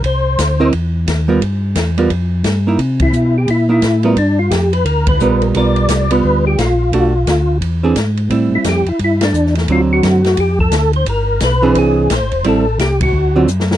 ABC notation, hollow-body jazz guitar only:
X:1
M:4/4
L:1/8
Q:"Swing" 1/4=174
K:Gmix
V:1 name="Hollow-body jazz guitar"
z3 [CE_B^d] z3 [G,=B,F_B] | z3 [G,B,F^A] z3 [^A,_E=E] | z4 z [_B,^DE] z [G,=B,F_B] | z6 [G,B,F^A]2 |
[G,B,F^A]3 [G,B,F]3 z2 | [A,D^F] z4 [E,^B,D^G] z2 | [G,CE]3 z4 z | [D,^F,C]3 z4 z |
z3 [E,CD_A]3 z2 | [G,CE] z4 [D,^F,C^E] z2 |]